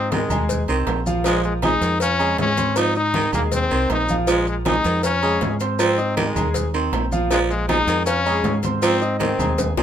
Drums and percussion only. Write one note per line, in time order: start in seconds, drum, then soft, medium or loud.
0.12 cowbell medium
0.12 high conga loud
0.12 low timbale medium
0.12 low agogo medium
0.12 maracas soft
0.30 high conga soft
0.30 low conga medium
0.30 low agogo loud
0.30 maracas medium
0.49 cowbell loud
0.49 high conga soft
0.49 low conga medium
0.49 maracas medium
0.68 high conga soft
0.68 low agogo medium
0.68 maracas soft
0.87 cowbell medium
0.87 high conga soft
0.87 low timbale medium
0.87 low agogo loud
0.87 maracas soft
1.06 high conga medium
1.06 maracas medium
1.24 cowbell loud
1.24 low agogo medium
1.24 maracas medium
1.44 high conga soft
1.44 maracas soft
1.62 cowbell medium
1.62 high conga loud
1.62 low timbale medium
1.62 low agogo loud
1.62 maracas soft
1.82 cowbell medium
1.82 maracas medium
2.00 cowbell loud
2.00 high conga soft
2.00 low agogo medium
2.00 maracas medium
2.19 high conga soft
2.19 low agogo loud
2.19 maracas soft
2.38 cowbell medium
2.38 high conga medium
2.38 low timbale medium
2.38 maracas soft
2.57 cowbell medium
2.57 high conga medium
2.57 low agogo medium
2.57 maracas medium
2.76 cowbell loud
2.76 high conga soft
2.76 low agogo loud
2.76 maracas medium
2.95 high conga soft
2.95 maracas soft
3.14 cowbell medium
3.14 high conga loud
3.14 low timbale medium
3.14 low agogo medium
3.14 maracas soft
3.33 high conga soft
3.33 low conga medium
3.33 low agogo loud
3.33 maracas medium
3.52 cowbell loud
3.52 high conga soft
3.52 low conga medium
3.52 maracas medium
3.71 high conga soft
3.71 low agogo medium
3.71 maracas soft
3.90 cowbell medium
3.90 high conga soft
3.90 low timbale medium
3.90 low agogo loud
3.90 maracas soft
4.09 high conga medium
4.09 maracas medium
4.27 cowbell loud
4.27 high conga soft
4.27 low agogo loud
4.27 maracas medium
4.47 high conga soft
4.47 maracas soft
4.65 cowbell medium
4.65 high conga loud
4.65 low timbale medium
4.65 low agogo loud
4.65 maracas soft
4.84 cowbell medium
4.84 high conga soft
4.84 maracas medium
5.03 cowbell loud
5.03 high conga soft
5.03 low agogo medium
5.03 maracas medium
5.23 high conga soft
5.23 low agogo loud
5.23 maracas soft
5.41 cowbell medium
5.41 high conga medium
5.41 low timbale medium
5.41 maracas soft
5.60 cowbell medium
5.60 low agogo medium
5.60 maracas medium
5.79 cowbell loud
5.79 high conga soft
5.79 low agogo loud
5.79 maracas medium
5.98 high conga soft
5.98 maracas soft
6.17 cowbell medium
6.17 high conga loud
6.17 low timbale medium
6.17 low agogo medium
6.17 maracas soft
6.36 high conga soft
6.36 low conga medium
6.36 low agogo loud
6.36 maracas medium
6.54 cowbell loud
6.54 high conga soft
6.54 low conga medium
6.54 maracas loud
6.74 high conga soft
6.74 low agogo medium
6.74 maracas soft
6.93 cowbell medium
6.93 high conga soft
6.93 low timbale medium
6.93 low agogo loud
6.93 maracas soft
7.12 high conga medium
7.12 maracas medium
7.31 cowbell loud
7.31 high conga soft
7.31 low agogo medium
7.31 maracas medium
7.51 high conga soft
7.51 maracas soft
7.69 cowbell medium
7.69 high conga loud
7.69 low timbale medium
7.69 low agogo loud
7.69 maracas soft
7.88 cowbell medium
7.88 high conga soft
7.88 maracas medium
8.06 cowbell loud
8.06 high conga soft
8.06 low agogo medium
8.06 maracas medium
8.26 high conga soft
8.26 low agogo loud
8.26 maracas soft
8.44 cowbell medium
8.44 high conga medium
8.44 low timbale medium
8.44 maracas soft
8.63 cowbell medium
8.63 high conga medium
8.63 low agogo medium
8.63 maracas medium
8.82 cowbell loud
8.82 high conga soft
8.82 low agogo loud
8.82 maracas medium
9.02 high conga soft
9.02 maracas soft
9.20 cowbell medium
9.20 high conga loud
9.20 low timbale medium
9.20 low agogo medium
9.20 maracas soft
9.39 high conga soft
9.39 low conga medium
9.39 low agogo loud
9.39 maracas medium
9.58 cowbell loud
9.58 high conga soft
9.58 low conga medium
9.58 high timbale medium
9.58 maracas medium
9.77 high bongo loud
9.77 high conga soft
9.77 low agogo medium
9.77 maracas soft